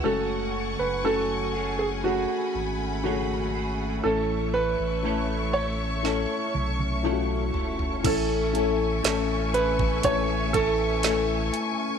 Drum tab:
CC |----------------|----------------|x---------------|
HH |----------------|----------------|x-x-x-x-x-x-x-x-|
SD |----------------|--------o-------|----o-------o---|
T1 |----------------|----------oo----|----------------|
FT |----------------|--------------oo|----------------|
BD |----------------|----------------|o------oo-o-----|